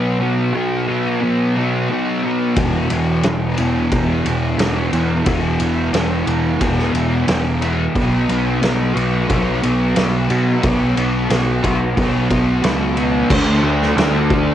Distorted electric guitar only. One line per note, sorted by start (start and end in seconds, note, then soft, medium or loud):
0.00 0.52 B2 medium
0.00 0.21 F#3 medium
0.00 0.19 B3 loud
0.20 0.53 F#3 medium
0.20 0.56 B3 medium
0.53 1.19 B2 medium
0.53 0.88 F#3 medium
0.53 0.87 B3 medium
0.87 1.21 F#3 medium
0.87 1.23 B3 medium
1.21 1.88 B2 loud
1.21 1.56 F#3 loud
1.21 1.55 B3 medium
1.55 1.89 F#3 medium
1.55 1.92 B3 medium
1.89 2.55 B2 medium
1.89 2.25 F#3 medium
1.89 2.23 B3 medium
2.23 2.57 F#3 medium
2.23 5.73 B3 medium
2.56 3.24 E2 medium
2.56 2.92 B2 loud
2.56 2.89 E3 loud
2.90 3.25 B2 medium
2.90 3.27 E3 medium
3.24 3.92 E2 medium
3.24 3.59 B2 medium
3.24 3.58 E3 medium
3.58 3.93 B2 medium
3.58 3.93 E3 medium
3.92 4.57 E2 medium
3.92 4.27 B2 loud
3.92 4.24 E3 loud
4.25 4.59 B2 medium
4.25 4.59 E3 medium
4.58 5.24 E2 medium
4.58 4.93 B2 medium
4.58 4.90 E3 medium
4.92 5.26 B2 medium
4.92 5.27 E3 medium
5.26 5.92 E2 medium
5.26 5.62 B2 loud
5.26 5.59 E3 loud
5.61 5.93 B2 medium
5.61 5.94 E3 medium
5.93 6.59 E2 medium
5.93 6.27 B2 medium
5.93 6.24 E3 medium
6.26 6.61 B2 medium
6.26 6.63 E3 medium
6.61 7.26 E2 medium
6.61 6.95 B2 medium
6.61 6.93 E3 loud
6.94 7.27 B2 medium
6.94 7.29 E3 medium
7.27 7.92 E2 medium
7.27 7.63 B2 medium
7.27 7.60 E3 medium
7.61 7.94 B2 medium
7.61 7.93 E3 medium
7.95 8.61 B2 loud
7.95 8.31 F#3 medium
7.95 8.29 B3 loud
8.30 8.62 F#3 medium
8.30 8.64 B3 medium
8.62 9.28 B2 medium
8.62 8.97 F#3 medium
8.62 8.94 B3 medium
8.94 9.28 F#3 medium
8.94 9.29 B3 medium
9.28 9.94 B2 medium
9.28 9.63 F#3 loud
9.28 9.61 B3 loud
9.62 9.95 F#3 medium
9.62 9.96 B3 medium
9.95 10.61 B2 medium
9.95 10.29 F#3 medium
9.95 10.26 B3 medium
10.28 10.62 F#3 medium
10.28 10.64 B3 medium
10.62 11.28 B2 medium
10.62 10.97 F#3 loud
10.62 10.95 B3 loud
10.96 11.30 F#3 medium
10.96 11.31 B3 medium
11.29 11.95 B2 medium
11.29 11.64 F#3 medium
11.29 11.62 B3 medium
11.63 11.96 F#3 medium
11.63 11.97 B3 medium
11.96 12.61 B2 medium
11.96 12.31 F#3 medium
11.96 12.28 B3 loud
12.29 12.63 F#3 medium
12.29 12.64 B3 medium
12.62 13.28 B2 medium
12.62 12.98 F#3 medium
12.62 12.96 B3 medium
12.97 13.30 F#3 medium
12.97 13.29 B3 medium
13.30 13.95 D3 medium
13.30 13.97 A3 loud
13.30 13.98 D4 loud
13.95 14.54 D3 medium
13.95 14.54 A3 medium
13.95 14.54 D4 medium